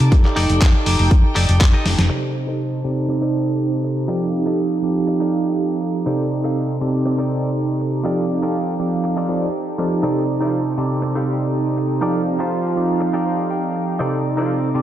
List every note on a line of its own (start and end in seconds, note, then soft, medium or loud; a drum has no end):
0.00 0.10 C3 loud
0.00 2.06 D6 medium
0.00 muted clean electric guitar stroke soft
0.00 closed hi-hat medium
0.11 0.83 D#4 medium
0.11 2.08 D#4 medium
0.11 0.83 G4 medium
0.11 2.08 A4 medium
0.11 0.84 A4 medium
0.11 0.84 D5 medium
0.11 2.08 G5 medium
0.11 kick loud
0.11 closed hi-hat medium
0.24 muted clean electric guitar stroke medium
0.24 clap soft
0.36 0.47 F1 medium
0.36 0.86 D#4 loud
0.36 0.86 G4 loud
0.36 0.86 A4 medium
0.36 0.87 D5 loud
0.36 open hi-hat loud
0.50 0.59 F1 medium
0.50 closed hi-hat medium
0.61 0.72 F2 medium
0.61 kick loud
0.61 clap loud
0.61 closed hi-hat medium
0.85 0.97 F1 loud
0.85 2.07 D#4 medium
0.85 2.07 G4 medium
0.85 2.08 A4 medium
0.85 2.08 D6 medium
0.85 open hi-hat loud
0.99 1.09 F1 loud
0.99 open hi-hat medium
1.11 kick loud
1.11 closed hi-hat medium
1.35 1.46 F1 loud
1.35 1.54 D#4 loud
1.35 1.55 G4 loud
1.35 1.55 A4 medium
1.35 1.55 D5 loud
1.35 open hi-hat loud
1.49 1.58 F1 medium
1.49 closed hi-hat medium
1.61 1.71 F2 medium
1.61 kick loud
1.61 clap loud
1.61 closed hi-hat medium
1.73 1.85 D#4 medium
1.73 1.85 G4 medium
1.73 1.86 A4 medium
1.73 1.86 D#5 medium
1.86 1.96 F1 medium
1.86 snare medium
1.86 open hi-hat loud
1.98 2.08 F1 medium
1.98 muted clean electric guitar stroke soft
1.98 snare medium
1.98 closed hi-hat medium
2.10 2.81 C3 medium
2.10 2.29 D#4 loud
2.10 2.82 D#4 medium
2.10 4.07 D#4 medium
2.10 2.82 G4 medium
2.10 2.29 A4 medium
2.10 2.82 A4 medium
2.10 4.07 C5 medium
2.10 2.29 C5 medium
2.10 2.29 D5 loud
2.10 4.07 A5 medium
2.10 13.96 D6 medium
2.10 2.82 D6 medium
2.47 2.79 D#4 medium
2.47 2.79 A4 medium
2.47 2.79 C5 medium
2.47 2.79 D#5 medium
2.84 3.06 C3 medium
2.84 3.06 D#4 medium
2.84 3.07 G4 medium
2.84 3.07 A4 medium
2.84 3.07 D5 medium
3.09 4.05 C3 medium
3.09 4.06 D#4 medium
3.09 4.06 G4 medium
3.09 4.06 A4 medium
3.09 4.06 D6 medium
3.09 muted clean electric guitar stroke medium
3.22 3.53 D#4 medium
3.22 3.53 A4 medium
3.22 3.53 C5 medium
3.22 3.53 D5 medium
3.83 muted clean electric guitar stroke soft
4.08 4.80 F3 medium
4.08 4.80 C4 medium
4.08 4.27 D#4 loud
4.08 4.80 D#4 medium
4.08 8.01 D#4 medium
4.08 4.27 F4 medium
4.08 4.80 G4 medium
4.08 6.05 G4 medium
4.08 4.28 G4 medium
4.08 6.05 A4 medium
4.08 4.28 A4 medium
4.08 4.80 A4 medium
4.08 4.28 D5 loud
4.08 6.05 F5 medium
4.08 4.81 D6 medium
4.46 4.77 D#4 medium
4.46 4.77 F4 medium
4.46 4.77 G4 medium
4.46 4.77 A4 medium
4.46 4.77 D#5 medium
4.82 6.04 F3 medium
4.82 6.04 C4 medium
4.82 6.04 D#4 medium
4.82 6.04 G4 medium
4.82 6.04 A4 medium
4.82 6.04 D6 medium
5.07 muted clean electric guitar stroke medium
5.20 5.51 D#4 medium
5.20 5.51 F4 medium
5.20 5.52 G4 medium
5.20 5.52 A4 medium
5.20 5.52 D5 medium
5.82 muted clean electric guitar stroke soft
6.06 6.78 C3 medium
6.06 8.03 C4 medium
6.06 6.26 D#4 loud
6.06 6.78 D#4 medium
6.06 6.79 G4 medium
6.06 11.98 A4 medium
6.06 6.26 A4 medium
6.06 6.79 A4 medium
6.06 6.26 C5 medium
6.06 6.79 D5 medium
6.06 6.26 D5 medium
6.44 6.75 D#4 medium
6.44 6.75 A4 medium
6.44 6.75 C5 medium
6.44 6.76 F5 medium
6.81 7.03 C3 medium
6.81 7.03 D#4 medium
6.81 7.03 G4 medium
6.81 7.03 A4 medium
6.81 7.03 D5 medium
7.05 8.02 C3 medium
7.05 8.02 D#4 medium
7.05 8.02 G4 medium
7.05 8.03 A4 medium
7.05 8.03 D5 medium
7.05 muted clean electric guitar stroke medium
7.18 7.50 D#4 medium
7.18 7.50 A4 medium
7.18 7.50 C5 medium
7.18 7.50 D5 medium
7.80 muted clean electric guitar stroke soft
8.04 8.76 F3 medium
8.04 8.76 C4 medium
8.04 8.24 D#4 loud
8.04 8.77 D#4 medium
8.04 14.82 D#4 medium
8.04 8.24 F4 medium
8.04 10.02 G4 medium
8.04 8.77 G4 medium
8.04 8.24 G4 medium
8.04 8.24 A4 medium
8.04 8.77 A4 medium
8.04 8.77 D5 medium
8.04 8.24 D5 loud
8.04 10.02 F5 medium
8.42 8.73 D#4 medium
8.42 8.74 F4 medium
8.42 8.74 G4 medium
8.42 8.74 A4 medium
8.42 8.74 D5 medium
8.79 9.27 F3 medium
8.79 9.27 C4 medium
8.79 9.27 D#4 medium
8.79 9.27 G4 medium
8.79 9.27 A4 medium
8.79 9.27 D5 medium
9.04 muted clean electric guitar stroke medium
9.17 9.48 D#4 medium
9.17 9.48 F4 medium
9.17 9.48 G4 medium
9.17 9.48 A4 medium
9.17 9.48 D5 medium
9.29 9.46 F3 medium
9.29 9.46 C4 medium
9.29 9.46 D#4 medium
9.29 9.46 G4 medium
9.29 9.46 A4 medium
9.29 9.46 D5 medium
9.78 10.01 F3 medium
9.78 10.01 C4 medium
9.78 10.01 D#4 medium
9.78 10.01 G4 medium
9.78 10.01 A4 medium
9.78 10.01 D5 medium
9.78 muted clean electric guitar stroke soft
10.03 10.75 C3 medium
10.03 12.00 C4 medium
10.03 10.75 D#4 medium
10.03 10.22 D#4 loud
10.03 10.75 G4 medium
10.03 10.22 A4 medium
10.03 10.75 A4 medium
10.03 10.23 C5 medium
10.03 10.75 D5 medium
10.03 10.23 D5 loud
10.41 10.58 F3 medium
10.41 10.72 D#4 medium
10.41 10.58 F4 medium
10.41 10.72 A4 medium
10.41 10.72 C5 medium
10.41 10.72 D5 medium
10.77 11.00 C3 medium
10.77 11.00 D#4 medium
10.77 11.00 G4 medium
10.77 11.00 A4 medium
10.77 11.00 D5 loud
11.02 11.99 C3 medium
11.02 11.99 D#4 medium
11.02 11.99 G4 medium
11.02 11.99 A4 medium
11.02 12.00 D5 medium
11.02 muted clean electric guitar stroke medium
11.15 11.23 G3 medium
11.15 11.46 D#4 medium
11.15 11.23 G4 medium
11.15 11.47 A4 medium
11.15 11.47 C5 medium
11.15 11.47 F5 medium
11.28 11.36 G3 medium
11.28 11.36 G4 medium
11.77 muted clean electric guitar stroke soft
12.01 12.73 F3 medium
12.01 12.73 C4 medium
12.01 12.21 D#4 loud
12.01 12.74 D#4 medium
12.01 12.21 F4 medium
12.01 13.98 G4 medium
12.01 12.74 G4 medium
12.01 12.21 G4 medium
12.01 12.21 A4 loud
12.01 13.98 A4 medium
12.01 12.74 A4 medium
12.01 12.21 D5 loud
12.01 12.74 D5 medium
12.01 13.98 F5 medium
12.39 13.09 F3 medium
12.39 12.70 D#4 medium
12.39 12.70 F4 medium
12.39 13.09 F4 medium
12.39 12.70 G4 medium
12.39 12.71 A4 medium
12.39 12.71 C5 medium
12.76 13.97 F3 medium
12.76 13.97 C4 medium
12.76 13.98 D#4 medium
12.76 13.98 G4 medium
12.76 13.98 A4 medium
12.76 13.98 D5 medium
13.00 muted clean electric guitar stroke medium
13.13 13.45 D#4 medium
13.13 13.45 F4 medium
13.13 13.45 G4 medium
13.13 13.25 A4 medium
13.13 13.45 D5 medium
13.26 13.49 C5 medium
13.51 13.97 G5 medium
13.75 muted clean electric guitar stroke soft
13.99 14.72 C3 medium
13.99 14.82 C4 medium
13.99 14.19 D#4 loud
13.99 14.72 D#4 medium
13.99 14.72 G4 medium
13.99 14.19 A4 medium
13.99 14.82 A4 medium
13.99 14.72 A4 medium
13.99 14.19 C5 medium
13.99 14.19 D5 loud
13.99 14.72 D5 medium
13.99 14.82 D6 medium
14.37 14.55 F3 medium
14.37 14.68 D#4 medium
14.37 14.55 F4 medium
14.37 14.69 A4 medium
14.37 14.69 C5 medium
14.37 14.69 D5 medium
14.74 14.82 C3 medium
14.74 14.82 D#4 medium
14.74 14.82 G4 medium
14.74 14.82 A4 medium
14.74 14.82 D5 loud